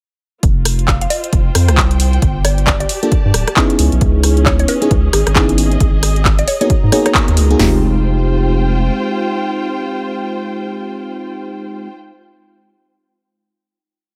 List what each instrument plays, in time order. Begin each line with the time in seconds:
0.43 sub bass F1, string section F4, kick, closed hi-hat
0.65 cross-stick, open hi-hat
0.78 string section C5, closed hi-hat
0.88 synth pluck F5, kick, clap
1.01 synth pluck F5, closed hi-hat
1.10 synth pluck D#5, open hi-hat
1.24 string section G5, closed hi-hat
1.33 sub bass F1, kick, closed hi-hat
1.55 sub bass F2, cross-stick, open hi-hat
1.68 sub bass C2, cross-stick, closed hi-hat
1.77 kick, clap
1.91 closed hi-hat
2.00 open hi-hat
2.13 closed hi-hat
2.22 sub bass G1, string section G4, kick, closed hi-hat
2.45 synth pluck D5, cross-stick, open hi-hat
2.58 closed hi-hat
2.67 synth pluck D5, kick, clap
2.71 string section D5
2.80 synth pluck D5, closed hi-hat
2.89 string section A5, open hi-hat
3.03 fm electric piano A#3 D4 F4 G4 A4, closed hi-hat
3.12 kick, closed hi-hat
3.25 sub bass G2
3.34 sub bass D1, cross-stick, open hi-hat
3.48 cross-stick, closed hi-hat
3.56 fm electric piano B3 C#4 D#4 E4 G#4, kick, clap
3.70 closed hi-hat
3.79 sub bass C#2, string section C#4, open hi-hat
3.92 sub bass B1, closed hi-hat
4.01 sub bass C#2, kick, closed hi-hat
4.17 string section G#4
4.23 cross-stick, open hi-hat
4.37 string section D#5, closed hi-hat
4.46 synth pluck C#5, kick, clap
4.59 synth pluck C#5, closed hi-hat
4.68 synth pluck B4, open hi-hat
4.82 fm electric piano B3 C#4 D#4 E4 G#4, closed hi-hat
4.91 sub bass C#2, kick, closed hi-hat
5.13 sub bass G#1, synth pluck G#4, cross-stick, open hi-hat
5.27 sub bass G#1, cross-stick, closed hi-hat
5.35 fm electric piano B3 C#4 D#4 E4 G#4, kick, clap
5.49 closed hi-hat
5.58 open hi-hat
5.71 closed hi-hat
5.80 sub bass G#1, kick, closed hi-hat
6.03 cross-stick, open hi-hat
6.16 closed hi-hat
6.25 kick, clap
6.39 synth pluck D#5, closed hi-hat
6.48 synth pluck C#5, open hi-hat
6.61 fm electric piano A#3 B3 D#4 F#4 G#4, synth pluck C#5, string section A#5, closed hi-hat
6.70 kick, closed hi-hat
6.83 sub bass G#2
6.92 fm electric piano A#3 B3 D#4 F#4 G#4, synth pluck C#5, cross-stick, open hi-hat
7.06 synth pluck C#5, cross-stick, closed hi-hat
7.15 kick, clap
7.28 sub bass D#2, closed hi-hat
7.37 sub bass C#2, open hi-hat
7.51 fm electric piano A#3 B3 D#4 F#4 G#4, closed hi-hat
7.59 sub bass F1, fm electric piano G#3 C4 D#4 F4 G4, string section F4, snare, floor tom, open hi-hat
7.68 string section C5
7.75 string section G5